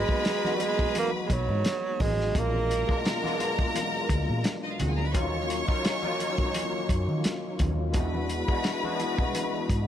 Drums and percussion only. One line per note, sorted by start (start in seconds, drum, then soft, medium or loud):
0.09 kick medium
0.25 snare loud
0.25 closed hi-hat medium
0.25 muted conga soft
0.45 snare soft
0.45 high conga medium
0.60 closed hi-hat medium
0.79 kick medium
0.79 low conga medium
0.95 closed hi-hat medium
0.95 high conga medium
1.30 kick medium
1.30 closed hi-hat medium
1.30 muted conga soft
1.49 high conga medium
1.65 snare loud
1.65 closed hi-hat medium
1.65 muted conga soft
2.00 kick medium
2.00 open hi-hat medium
2.00 high conga medium
2.00 low conga medium
2.21 snare soft
2.35 kick loud
2.35 closed hi-hat medium
2.35 muted conga soft
2.35 low conga medium
2.53 high conga medium
2.71 closed hi-hat medium
2.89 kick medium
3.05 snare loud
3.05 closed hi-hat medium
3.05 muted conga soft
3.24 snare soft
3.24 high conga medium
3.40 closed hi-hat medium
3.40 muted conga soft
3.58 kick medium
3.58 low conga medium
3.74 closed hi-hat loud
3.74 high conga medium
4.09 kick medium
4.09 closed hi-hat medium
4.28 high conga medium
4.44 snare loud
4.44 closed hi-hat medium
4.80 closed hi-hat medium
4.80 high conga medium
4.80 low conga medium
5.14 kick loud
5.14 closed hi-hat medium
5.14 muted conga soft
5.14 low conga medium
5.33 high conga medium
5.50 closed hi-hat medium
5.68 kick medium
5.85 snare loud
5.85 closed hi-hat medium
6.03 high conga medium
6.20 closed hi-hat medium
6.38 kick medium
6.38 low conga medium
6.54 closed hi-hat medium
6.54 high conga medium
6.89 kick medium
6.89 closed hi-hat medium
7.09 high conga medium
7.24 snare loud
7.24 closed hi-hat medium
7.24 muted conga soft
7.59 kick medium
7.59 closed hi-hat medium
7.59 muted conga soft
7.59 high conga medium
7.59 low conga medium
7.94 kick loud
7.94 closed hi-hat medium
7.94 low conga medium
8.14 high conga medium
8.29 closed hi-hat medium
8.48 kick medium
8.64 snare loud
8.64 closed hi-hat medium
8.64 muted conga soft
8.84 high conga medium
9.00 closed hi-hat medium
9.00 muted conga soft
9.18 kick medium
9.18 low conga medium
9.35 closed hi-hat medium
9.35 muted conga soft
9.35 high conga medium
9.70 kick medium
9.70 closed hi-hat medium